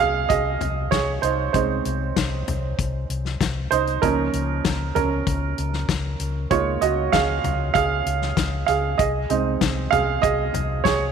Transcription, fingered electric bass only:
0, 0, Header, 1, 2, 480
1, 0, Start_track
1, 0, Key_signature, -5, "major"
1, 0, Tempo, 620476
1, 1194, Time_signature, 4, 2, 24, 8
1, 8602, End_track
2, 0, Start_track
2, 0, Title_t, "Fingered electric bass"
2, 0, Program_c, 0, 33
2, 0, Note_on_c, 0, 36, 89
2, 190, Note_off_c, 0, 36, 0
2, 232, Note_on_c, 0, 36, 89
2, 430, Note_off_c, 0, 36, 0
2, 472, Note_on_c, 0, 36, 84
2, 670, Note_off_c, 0, 36, 0
2, 710, Note_on_c, 0, 36, 90
2, 908, Note_off_c, 0, 36, 0
2, 949, Note_on_c, 0, 36, 87
2, 1148, Note_off_c, 0, 36, 0
2, 1191, Note_on_c, 0, 36, 77
2, 1389, Note_off_c, 0, 36, 0
2, 1434, Note_on_c, 0, 36, 82
2, 1631, Note_off_c, 0, 36, 0
2, 1675, Note_on_c, 0, 36, 83
2, 1872, Note_off_c, 0, 36, 0
2, 1914, Note_on_c, 0, 36, 89
2, 2111, Note_off_c, 0, 36, 0
2, 2155, Note_on_c, 0, 36, 80
2, 2352, Note_off_c, 0, 36, 0
2, 2395, Note_on_c, 0, 36, 67
2, 2592, Note_off_c, 0, 36, 0
2, 2634, Note_on_c, 0, 36, 87
2, 2832, Note_off_c, 0, 36, 0
2, 2874, Note_on_c, 0, 36, 82
2, 3072, Note_off_c, 0, 36, 0
2, 3116, Note_on_c, 0, 37, 80
2, 3313, Note_off_c, 0, 37, 0
2, 3356, Note_on_c, 0, 37, 88
2, 3553, Note_off_c, 0, 37, 0
2, 3598, Note_on_c, 0, 37, 76
2, 3794, Note_off_c, 0, 37, 0
2, 3836, Note_on_c, 0, 37, 82
2, 4033, Note_off_c, 0, 37, 0
2, 4074, Note_on_c, 0, 37, 90
2, 4272, Note_off_c, 0, 37, 0
2, 4320, Note_on_c, 0, 37, 75
2, 4515, Note_off_c, 0, 37, 0
2, 4554, Note_on_c, 0, 37, 89
2, 4752, Note_off_c, 0, 37, 0
2, 4793, Note_on_c, 0, 37, 79
2, 4991, Note_off_c, 0, 37, 0
2, 5035, Note_on_c, 0, 37, 87
2, 5232, Note_off_c, 0, 37, 0
2, 5273, Note_on_c, 0, 37, 80
2, 5471, Note_off_c, 0, 37, 0
2, 5517, Note_on_c, 0, 37, 82
2, 5713, Note_off_c, 0, 37, 0
2, 5754, Note_on_c, 0, 37, 81
2, 5951, Note_off_c, 0, 37, 0
2, 5995, Note_on_c, 0, 37, 84
2, 6192, Note_off_c, 0, 37, 0
2, 6236, Note_on_c, 0, 37, 74
2, 6432, Note_off_c, 0, 37, 0
2, 6473, Note_on_c, 0, 37, 92
2, 6671, Note_off_c, 0, 37, 0
2, 6717, Note_on_c, 0, 37, 81
2, 6913, Note_off_c, 0, 37, 0
2, 6956, Note_on_c, 0, 36, 92
2, 7152, Note_off_c, 0, 36, 0
2, 7195, Note_on_c, 0, 36, 90
2, 7392, Note_off_c, 0, 36, 0
2, 7435, Note_on_c, 0, 36, 84
2, 7632, Note_off_c, 0, 36, 0
2, 7678, Note_on_c, 0, 36, 84
2, 7873, Note_off_c, 0, 36, 0
2, 7916, Note_on_c, 0, 36, 90
2, 8112, Note_off_c, 0, 36, 0
2, 8158, Note_on_c, 0, 36, 80
2, 8353, Note_off_c, 0, 36, 0
2, 8394, Note_on_c, 0, 36, 95
2, 8591, Note_off_c, 0, 36, 0
2, 8602, End_track
0, 0, End_of_file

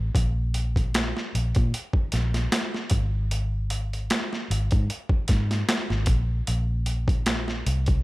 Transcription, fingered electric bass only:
0, 0, Header, 1, 2, 480
1, 0, Start_track
1, 0, Tempo, 789474
1, 90, Time_signature, 4, 2, 24, 8
1, 4885, End_track
2, 0, Start_track
2, 0, Title_t, "Fingered electric bass"
2, 0, Program_c, 0, 33
2, 94, Note_on_c, 0, 34, 84
2, 677, Note_off_c, 0, 34, 0
2, 819, Note_on_c, 0, 34, 69
2, 924, Note_off_c, 0, 34, 0
2, 955, Note_on_c, 0, 46, 80
2, 1041, Note_off_c, 0, 46, 0
2, 1297, Note_on_c, 0, 34, 81
2, 1495, Note_off_c, 0, 34, 0
2, 1775, Note_on_c, 0, 32, 77
2, 2482, Note_off_c, 0, 32, 0
2, 2738, Note_on_c, 0, 32, 78
2, 2843, Note_off_c, 0, 32, 0
2, 2877, Note_on_c, 0, 44, 77
2, 2962, Note_off_c, 0, 44, 0
2, 3223, Note_on_c, 0, 44, 91
2, 3418, Note_off_c, 0, 44, 0
2, 3587, Note_on_c, 0, 32, 85
2, 3676, Note_off_c, 0, 32, 0
2, 3695, Note_on_c, 0, 34, 74
2, 3894, Note_off_c, 0, 34, 0
2, 3941, Note_on_c, 0, 34, 79
2, 4631, Note_off_c, 0, 34, 0
2, 4660, Note_on_c, 0, 36, 77
2, 4856, Note_off_c, 0, 36, 0
2, 4885, End_track
0, 0, End_of_file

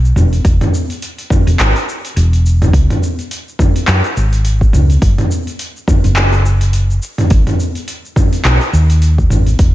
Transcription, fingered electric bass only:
0, 0, Header, 1, 2, 480
1, 0, Start_track
1, 0, Tempo, 571429
1, 377, Time_signature, 4, 2, 24, 8
1, 8187, End_track
2, 0, Start_track
2, 0, Title_t, "Fingered electric bass"
2, 0, Program_c, 0, 33
2, 0, Note_on_c, 0, 35, 82
2, 94, Note_off_c, 0, 35, 0
2, 133, Note_on_c, 0, 28, 87
2, 321, Note_off_c, 0, 28, 0
2, 374, Note_on_c, 0, 28, 96
2, 477, Note_off_c, 0, 28, 0
2, 1234, Note_on_c, 0, 28, 83
2, 1331, Note_off_c, 0, 28, 0
2, 1336, Note_on_c, 0, 32, 85
2, 1438, Note_off_c, 0, 32, 0
2, 1817, Note_on_c, 0, 28, 91
2, 2254, Note_off_c, 0, 28, 0
2, 2295, Note_on_c, 0, 37, 94
2, 2398, Note_off_c, 0, 37, 0
2, 3257, Note_on_c, 0, 42, 96
2, 3359, Note_off_c, 0, 42, 0
2, 3500, Note_on_c, 0, 32, 89
2, 3935, Note_off_c, 0, 32, 0
2, 3976, Note_on_c, 0, 37, 77
2, 4163, Note_off_c, 0, 37, 0
2, 4214, Note_on_c, 0, 30, 91
2, 4317, Note_off_c, 0, 30, 0
2, 5075, Note_on_c, 0, 30, 90
2, 5854, Note_off_c, 0, 30, 0
2, 6137, Note_on_c, 0, 32, 99
2, 6239, Note_off_c, 0, 32, 0
2, 7095, Note_on_c, 0, 35, 100
2, 7198, Note_off_c, 0, 35, 0
2, 7334, Note_on_c, 0, 39, 90
2, 7773, Note_off_c, 0, 39, 0
2, 7813, Note_on_c, 0, 32, 80
2, 8001, Note_off_c, 0, 32, 0
2, 8055, Note_on_c, 0, 28, 90
2, 8157, Note_off_c, 0, 28, 0
2, 8187, End_track
0, 0, End_of_file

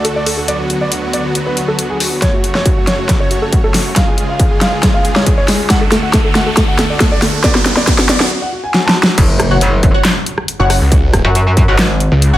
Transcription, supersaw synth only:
0, 0, Header, 1, 2, 480
1, 0, Start_track
1, 0, Key_signature, 3, "minor"
1, 0, Tempo, 434783
1, 532, Time_signature, 4, 2, 24, 8
1, 13665, End_track
2, 0, Start_track
2, 0, Title_t, "Supersaw synth"
2, 0, Program_c, 0, 81
2, 0, Note_on_c, 0, 38, 72
2, 0, Note_on_c, 0, 50, 70
2, 0, Note_on_c, 0, 57, 69
2, 0, Note_on_c, 0, 66, 67
2, 0, Note_on_c, 0, 69, 85
2, 513, Note_off_c, 0, 57, 0
2, 513, Note_off_c, 0, 69, 0
2, 531, Note_on_c, 0, 54, 68
2, 532, Note_on_c, 0, 59, 68
2, 2414, Note_off_c, 0, 38, 0
2, 2414, Note_off_c, 0, 50, 0
2, 2414, Note_off_c, 0, 66, 0
2, 2433, Note_off_c, 0, 54, 0
2, 2433, Note_off_c, 0, 59, 0
2, 2452, Note_on_c, 0, 57, 68
2, 2453, Note_on_c, 0, 42, 77
2, 2453, Note_on_c, 0, 49, 70
2, 2453, Note_on_c, 0, 66, 72
2, 2453, Note_on_c, 0, 73, 86
2, 4353, Note_off_c, 0, 57, 0
2, 4353, Note_off_c, 0, 66, 0
2, 4353, Note_off_c, 0, 73, 0
2, 4354, Note_off_c, 0, 42, 0
2, 4371, Note_on_c, 0, 37, 76
2, 4371, Note_on_c, 0, 68, 82
2, 4372, Note_on_c, 0, 56, 69
2, 4372, Note_on_c, 0, 65, 71
2, 6254, Note_off_c, 0, 49, 0
2, 6272, Note_off_c, 0, 37, 0
2, 6272, Note_off_c, 0, 68, 0
2, 6273, Note_off_c, 0, 56, 0
2, 6273, Note_off_c, 0, 65, 0
2, 6292, Note_on_c, 0, 38, 80
2, 6292, Note_on_c, 0, 50, 72
2, 6292, Note_on_c, 0, 57, 71
2, 6292, Note_on_c, 0, 66, 72
2, 6293, Note_on_c, 0, 69, 85
2, 8193, Note_off_c, 0, 57, 0
2, 8193, Note_off_c, 0, 69, 0
2, 8211, Note_on_c, 0, 54, 71
2, 8211, Note_on_c, 0, 59, 73
2, 9143, Note_off_c, 0, 38, 0
2, 9144, Note_off_c, 0, 50, 0
2, 9144, Note_off_c, 0, 66, 0
2, 9162, Note_off_c, 0, 54, 0
2, 9162, Note_off_c, 0, 59, 0
2, 13665, End_track
0, 0, End_of_file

